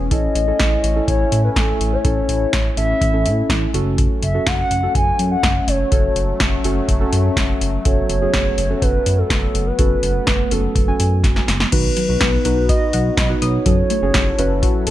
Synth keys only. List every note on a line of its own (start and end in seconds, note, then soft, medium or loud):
0.11 0.35 C#4 medium
0.11 0.35 E4 medium
0.11 0.35 A4 medium
0.47 0.80 C#4 medium
0.47 0.80 E4 medium
0.47 0.80 A4 medium
0.96 1.60 C#4 medium
0.96 1.60 E4 medium
0.96 1.60 A4 medium
2.05 2.53 C#4 medium
2.05 2.53 E4 medium
2.05 2.53 A4 medium
2.77 3.01 C#4 medium
2.77 3.01 E4 medium
2.77 3.01 A4 medium
3.14 3.70 C#4 medium
3.14 3.70 E4 medium
3.14 3.70 A4 medium
3.74 4.22 C#4 medium
3.74 4.22 F#4 medium
3.74 4.22 A4 medium
4.35 4.67 C#4 medium
4.35 4.67 F#4 medium
4.35 4.67 A4 medium
4.83 5.47 C#4 medium
4.83 5.47 F#4 medium
4.83 5.47 A4 medium
5.92 6.40 C#4 medium
5.92 6.40 F#4 medium
5.92 6.40 A4 medium
6.64 6.89 C#4 medium
6.64 6.89 F#4 medium
6.64 6.89 A4 medium
7.01 7.57 C#4 medium
7.01 7.57 F#4 medium
7.01 7.57 A4 medium
7.85 8.10 C#4 medium
7.85 8.10 F#4 medium
7.85 8.10 A4 medium
8.22 8.54 C#4 medium
8.22 8.54 F#4 medium
8.22 8.54 G#4 medium
8.70 9.34 C#4 medium
8.70 9.34 F#4 medium
8.70 9.34 A4 medium
9.79 10.27 C#4 medium
9.79 10.27 F#4 medium
9.79 10.27 A4 medium
10.51 10.76 C#4 medium
10.51 10.76 F#4 medium
10.51 10.76 A4 medium
10.88 11.44 C#4 medium
10.88 11.44 F#4 medium
10.88 11.44 G#5 medium
11.72 11.97 D#4 medium
11.72 11.97 F#4 medium
11.72 11.97 B4 medium
12.09 12.33 D#4 medium
12.09 12.33 F#4 medium
12.09 12.33 B4 medium
12.45 13.01 D#4 medium
12.45 13.01 F#4 medium
12.45 13.01 B4 medium
13.30 13.38 D#4 medium
13.30 13.38 F#4 medium
13.30 13.38 B4 medium
13.42 13.58 D#4 medium
13.42 13.58 F#4 medium
13.42 13.58 B4 medium
13.66 13.90 C#4 medium
13.66 13.90 F#4 medium
13.66 13.90 A4 medium
14.02 14.26 C#4 medium
14.02 14.26 F#4 medium
14.02 14.26 G#4 medium
14.39 14.90 C#4 medium
14.39 14.90 F#4 medium
14.39 14.90 B4 loud